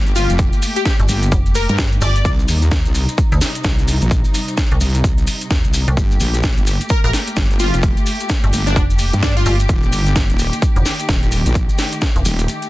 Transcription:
Already playing: G1 A3 A#3 G4
0.06 closed hi-hat, maracas
0.16 F4, open hi-hat, maracas
0.30 F1, closed hi-hat, maracas
0.38 kick, closed hi-hat, maracas
0.53 closed hi-hat, maracas
0.62 open hi-hat, maracas
0.76 G4, closed hi-hat, maracas
0.85 G4, kick, snare, closed hi-hat, maracas
1.00 G1, closed hi-hat, maracas
1.08 G1, open hi-hat, maracas
1.23 closed hi-hat, maracas
1.32 F1, kick, closed hi-hat, maracas
1.46 closed hi-hat, maracas
1.55 A#4, open hi-hat, maracas
1.69 G2 A#4, closed hi-hat, maracas
1.78 kick, snare, closed hi-hat, maracas
1.92 closed hi-hat, maracas
2.01 G1 D5, open hi-hat, maracas
2.16 closed hi-hat, maracas
2.25 C2 C3 G3 D#4, kick, closed hi-hat, maracas
2.39 maracas
2.48 D#2, open hi-hat, maracas
2.62 closed hi-hat, maracas
2.71 kick, snare, closed hi-hat, maracas
2.86 C2, closed hi-hat, maracas
2.95 open hi-hat, maracas
3.09 closed hi-hat, maracas
3.18 kick, closed hi-hat, maracas
3.32 D2, closed hi-hat, maracas
3.41 snare, open hi-hat, maracas
3.55 closed hi-hat, maracas
3.64 C2, kick, snare, closed hi-hat, maracas
3.79 closed hi-hat, maracas
3.88 open hi-hat, maracas
4.01 A#1, closed hi-hat, maracas
4.11 kick, closed hi-hat, maracas
4.25 closed hi-hat, maracas
4.34 open hi-hat, maracas
4.48 closed hi-hat, maracas
4.57 kick, snare, closed hi-hat, maracas
4.71 C2, closed hi-hat, maracas
4.81 C2, open hi-hat, maracas
4.95 closed hi-hat, maracas
5.04 C2, kick, closed hi-hat, maracas
5.18 closed hi-hat, maracas
5.27 open hi-hat, maracas
5.41 closed hi-hat, maracas
5.51 D#2, kick, snare, closed hi-hat, maracas
5.64 C2, closed hi-hat, maracas
5.74 open hi-hat, maracas
5.87 C2, closed hi-hat, maracas
5.97 G1 A3 A#3 G4, kick, closed hi-hat, maracas
6.11 maracas
6.20 A#1, open hi-hat, maracas
6.34 closed hi-hat, maracas
6.43 kick, snare, closed hi-hat, maracas
6.57 G1, closed hi-hat, maracas
6.67 open hi-hat, maracas
6.81 closed hi-hat, maracas
6.89 A#4, kick, closed hi-hat, maracas
7.04 A1 A#4, closed hi-hat, maracas
7.13 snare, open hi-hat, maracas
7.27 closed hi-hat, maracas
7.36 G1, kick, snare, closed hi-hat, maracas
7.51 closed hi-hat, maracas
7.59 F4, open hi-hat, maracas
7.74 F1, closed hi-hat, maracas
7.83 kick, closed hi-hat, maracas
7.97 closed hi-hat, maracas
8.06 open hi-hat, maracas
8.20 closed hi-hat, maracas
8.29 kick, snare, closed hi-hat, maracas
8.43 G1, closed hi-hat, maracas
8.53 G1, open hi-hat, maracas
8.67 D4, closed hi-hat, maracas
8.76 F1, kick, closed hi-hat, maracas
8.90 closed hi-hat, maracas
8.99 open hi-hat, maracas
9.13 G2, closed hi-hat, maracas
9.23 D4, kick, snare, closed hi-hat, maracas
9.37 F4, closed hi-hat, maracas
9.46 G1 F4, open hi-hat, maracas
9.60 closed hi-hat, maracas
9.69 D#1 D#3 A#3, kick, closed hi-hat, maracas
9.83 maracas
9.92 G1, open hi-hat, maracas
10.06 closed hi-hat, maracas
10.16 kick, snare, closed hi-hat, maracas
10.30 D#1, closed hi-hat, maracas
10.39 open hi-hat, maracas
10.53 closed hi-hat, maracas
10.62 kick, closed hi-hat, maracas
10.76 F1, closed hi-hat, maracas
10.86 snare, open hi-hat, maracas
11.00 closed hi-hat, maracas
11.09 D#1, kick, snare, closed hi-hat, maracas
11.23 closed hi-hat, maracas
11.32 open hi-hat, maracas
11.46 A#1, closed hi-hat, maracas
11.55 A3, kick, closed hi-hat, maracas
11.69 closed hi-hat, maracas
11.78 snare, open hi-hat, maracas
11.92 closed hi-hat, maracas
12.01 kick, snare, closed hi-hat, maracas
12.16 D#1, closed hi-hat, maracas
12.25 D#1, open hi-hat, maracas
12.39 closed hi-hat, maracas
12.48 closed hi-hat, maracas
12.62 closed hi-hat, maracas

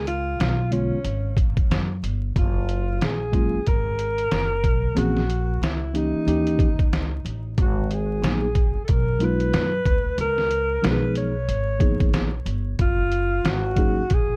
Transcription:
Already playing: C#2
0.07 F4, closed hi-hat
0.40 B1, snare, closed hi-hat
0.71 D3 G#3 B3 C#4 F4, closed hi-hat
0.91 muted upright bass stroke
1.04 G#1, closed hi-hat
1.37 kick, closed hi-hat
1.57 kick, closed hi-hat
1.70 F#2, snare, closed hi-hat
2.03 G1, closed hi-hat
2.36 F#1 F4, kick, closed hi-hat
2.69 closed hi-hat
3.01 A#1 G#4, snare, closed hi-hat
3.32 F#3 G#3 A#3 C#4 F4, kick, closed hi-hat
3.53 muted upright bass stroke
3.66 G#1 A#4, kick, closed hi-hat
3.99 closed hi-hat
4.18 closed hi-hat
4.32 F#1, snare, closed hi-hat
4.64 B1, kick, closed hi-hat
4.95 A#1 E3 A#3 C4 C#4 F#4 G#4, closed hi-hat
5.17 snare
5.30 closed hi-hat
5.62 C#2 E4, snare, closed hi-hat
5.93 E3 A#3 C#4 D#4 G4, closed hi-hat
6.14 muted upright bass stroke
6.26 D#2 E3 A#3 C#4 D#4 G4, closed hi-hat
6.47 closed hi-hat
6.59 kick, closed hi-hat
6.79 kick, closed hi-hat
6.93 C#2, snare, closed hi-hat
7.25 A1, closed hi-hat
7.58 G#1, kick, closed hi-hat
7.62 F#4
7.91 G#4, closed hi-hat
8.22 A#1 F#3 A#3 B3 D#4 G#4, snare, closed hi-hat
8.55 kick, closed hi-hat
8.75 muted upright bass stroke
8.84 A4, closed hi-hat
8.89 B1 A#4, kick
9.19 F#3 G#3 B3 D#4 F4, closed hi-hat
9.24 B4
9.40 closed hi-hat
9.53 F#2, snare, closed hi-hat
9.86 D2, kick, closed hi-hat
10.18 C#2 A#4, closed hi-hat
10.38 snare
10.51 closed hi-hat
10.82 B1 F3 G#3 B3 D#4 F#4 B4, snare, closed hi-hat
10.91 G#4
11.15 C#5, closed hi-hat
11.48 G#1, closed hi-hat
11.79 F3 A#3 B3 D#4 G#4, kick, closed hi-hat
12.00 kick, closed hi-hat
12.14 A#1, snare, closed hi-hat
12.45 G1, closed hi-hat
12.79 F#1 F4, kick, closed hi-hat
13.12 closed hi-hat
13.44 G#1, snare, closed hi-hat
13.49 F#4
13.76 F#3 A#3 C#4 D#4 G#4, kick, closed hi-hat
13.95 muted upright bass stroke
14.10 A#1 G#4, kick, closed hi-hat

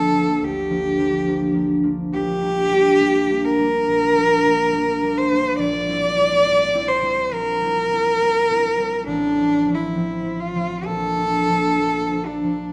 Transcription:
Already playing: G1 F3 A#3 D4 A4
0.14 F3 A#3 D4
0.42 D2 G4
0.70 F3 A#3 D4
0.98 F3 A#3 D4
1.26 F3 A#3 D4
1.54 F3 A#3 D4
1.83 F3 A#3 D4
2.12 A#1 G4
2.41 G3 A#3 D4
2.71 G3 A#3 D4
3.00 G3 A#3 D4
3.29 G3 A#3 D4
3.45 A#4
3.59 G3 A#3 D4
3.88 A#1
4.16 G3 A#3 D4
4.45 G3 A#3 D4
4.72 G3 A#3
4.78 D4
5.03 G3 A#3 D4
5.18 C5
5.31 G3 A#3 D4
5.59 A#1 D5
5.88 G3 C4 E4
6.15 G3 C4 E4
6.44 G3 C4 E4
6.74 G3 C4 E4
6.88 C5
7.02 G3 C4 E4
7.31 A#1 A#4
7.61 G3 C4 E4
7.91 G3 C4 E4
8.21 G3 C4 E4
8.50 G3 C4 E4
8.79 G3 C4 E4
9.07 A1 D4
9.36 F3 C4
9.66 F3 C4
9.75 E4
9.95 F3 C4
10.24 F3 C4
10.40 F4
10.55 F3 C4
10.85 A#1 A4
11.16 F3 A#3 D4
11.49 F3 A#3 D4
11.79 F3 A#3 D4
12.11 F3 A#3 D4
12.26 D4
12.43 F3 A#3 D4

